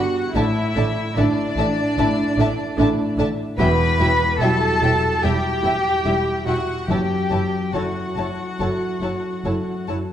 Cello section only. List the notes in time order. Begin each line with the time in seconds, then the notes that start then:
Already playing: F#4
0.36 E4
1.18 D4
3.59 B4
4.42 A4
5.24 G4
6.47 F#4
6.89 G4
7.74 F#4